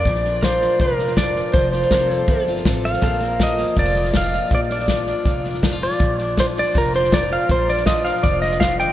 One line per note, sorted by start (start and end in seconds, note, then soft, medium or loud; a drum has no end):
0.00 0.42 F3 medium
0.00 0.44 D5 loud
0.05 0.65 A#1 medium
0.05 0.80 A#2 medium
0.05 kick loud
0.05 snare soft
0.15 snare soft
0.25 0.62 D4 medium
0.25 snare soft
0.42 1.16 F3 medium
0.42 0.81 F4 medium
0.42 1.53 A#4 medium
0.42 0.81 C5 medium
0.42 1.53 D5 medium
0.42 1.54 F5 medium
0.42 kick medium
0.42 snare loud
0.42 hi-hat pedal medium
0.61 0.99 D4 medium
0.61 snare soft
0.79 1.40 F1 medium
0.79 1.52 A#2 medium
0.79 1.17 F4 medium
0.79 1.18 A#4 medium
0.79 kick loud
0.79 snare soft
0.99 1.53 D4 medium
0.99 snare soft
1.08 snare soft
1.17 1.53 F3 medium
1.17 1.73 F4 medium
1.17 1.55 D5 medium
1.17 kick medium
1.17 snare loud
1.17 hi-hat pedal medium
1.36 snare soft
1.53 1.84 F1 medium
1.53 3.02 F3 medium
1.53 1.71 C5 medium
1.53 kick loud
1.53 snare soft
1.72 2.09 F4 medium
1.72 2.43 C5 medium
1.72 snare soft
1.82 snare soft
1.91 2.23 F1 medium
1.91 2.65 C4 medium
1.91 2.28 A4 medium
1.91 2.12 A#4 medium
1.91 2.19 D5 medium
1.91 kick medium
1.91 snare medium
1.91 hi-hat pedal medium
1.95 3.04 F5 medium
2.10 2.48 F4 medium
2.10 3.02 A4 medium
2.10 snare soft
2.19 3.03 C5 medium
2.28 2.60 G1 medium
2.28 3.03 C3 medium
2.28 2.65 A4 medium
2.28 kick loud
2.28 snare soft
2.47 3.04 F4 medium
2.47 snare soft
2.56 snare soft
2.65 2.97 A1 medium
2.65 3.01 C4 medium
2.65 3.01 A4 medium
2.65 kick medium
2.65 snare loud
2.65 hi-hat pedal medium
2.84 3.42 F5 medium
2.84 snare soft
2.93 snare soft
3.02 3.63 A#1 medium
3.02 3.76 A#2 medium
3.02 3.39 F3 medium
3.02 3.20 A#3 medium
3.02 3.40 F4 medium
3.02 3.23 A4 medium
3.02 6.55 A#4 medium
3.02 kick loud
3.02 snare soft
3.06 8.93 F5 medium
3.20 3.58 A#3 medium
3.20 8.93 A#4 medium
3.20 snare soft
3.39 4.13 F3 medium
3.39 3.76 F4 medium
3.39 3.79 D#5 medium
3.39 kick medium
3.39 snare loud
3.39 hi-hat pedal medium
3.58 3.95 A#3 medium
3.58 snare soft
3.76 4.37 F1 medium
3.76 4.51 A#2 medium
3.76 3.86 D4 soft
3.76 4.16 D5 medium
3.76 kick medium
3.76 snare soft
3.86 4.14 F4 medium
3.95 4.70 A#3 medium
3.95 snare soft
4.05 snare soft
4.13 4.89 F3 medium
4.13 4.24 D4 soft
4.13 4.54 F5 medium
4.13 kick medium
4.13 snare loud
4.13 hi-hat pedal medium
4.24 4.51 F4 soft
4.32 snare soft
4.51 5.12 A#1 medium
4.51 5.25 A#2 medium
4.51 4.60 D5 medium
4.51 kick loud
4.51 snare soft
4.70 5.08 D4 medium
4.70 5.42 D5 medium
4.70 snare soft
4.79 snare soft
4.88 5.62 F3 medium
4.88 5.26 F4 medium
4.88 kick medium
4.88 snare medium
4.88 hi-hat pedal medium
5.07 5.45 D4 medium
5.07 snare soft
5.25 5.86 F1 medium
5.25 5.99 A#2 medium
5.25 5.63 F4 medium
5.25 kick loud
5.25 snare soft
5.44 5.63 D4 medium
5.44 snare soft
5.54 snare soft
5.63 6.37 F3 medium
5.63 5.72 D4 medium
5.63 kick medium
5.63 snare loud
5.63 hi-hat pedal medium
5.72 6.00 F4 soft
5.82 6.40 D5 medium
5.82 snare soft
5.91 snare soft
6.00 6.61 A#1 medium
6.00 6.74 A#2 medium
6.00 kick loud
6.00 snare soft
6.19 6.57 D4 medium
6.19 snare soft
6.37 7.12 F3 medium
6.37 6.75 F4 medium
6.37 6.45 C5 medium
6.37 kick medium
6.37 snare loud
6.37 hi-hat pedal medium
6.57 6.93 D4 medium
6.57 6.77 D5 medium
6.57 snare soft
6.75 7.35 F1 medium
6.75 7.47 A#2 medium
6.75 7.12 F4 medium
6.75 6.95 A#4 medium
6.75 kick loud
6.75 snare soft
6.94 7.48 D4 medium
6.94 7.13 C5 medium
6.94 snare soft
7.04 snare soft
7.12 7.86 F3 medium
7.12 7.87 F4 medium
7.12 7.32 D5 medium
7.12 kick medium
7.12 snare loud
7.12 hi-hat pedal medium
7.31 7.49 F5 medium
7.31 snare soft
7.49 8.10 A#1 medium
7.49 8.23 A#2 medium
7.49 7.70 C5 medium
7.49 kick loud
7.49 snare soft
7.68 8.05 D4 medium
7.68 7.86 D5 medium
7.68 snare soft
7.77 snare soft
7.86 8.93 F3 medium
7.86 8.24 F4 medium
7.86 8.06 D#5 medium
7.86 kick medium
7.86 snare loud
7.86 hi-hat pedal medium
8.05 8.42 D4 medium
8.05 8.24 F5 medium
8.05 snare soft
8.23 8.84 F1 medium
8.23 8.93 A#2 medium
8.23 8.93 F4 medium
8.23 8.41 D5 loud
8.23 kick loud
8.23 snare soft
8.42 8.93 D4 medium
8.42 8.61 D#5 medium
8.42 snare soft
8.51 snare soft
8.60 8.80 D3 medium
8.60 8.79 F5 medium
8.60 kick medium
8.60 snare loud
8.60 hi-hat pedal medium
8.79 8.93 D#3 medium
8.79 8.93 G5 medium
8.79 snare soft